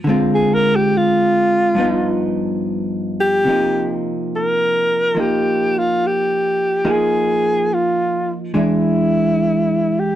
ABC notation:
X:1
M:4/4
L:1/16
Q:"Swing" 1/4=71
K:Dphr
V:1 name="Alto saxophone"
z _A B G F6 z4 G2- | [K:Cm] G2 z2 B4 G2 F2 G4 | A4 F2 z2 =E6 G2 |]
V:2 name="Hollow-body jazz guitar"
[D,_A,CF]8 [G,,F,=B,E]8 | [K:Cm] [C,F,B,E]8 [F,B,E]8 | [F,B,EA]8 [=E,^G,D]8 |]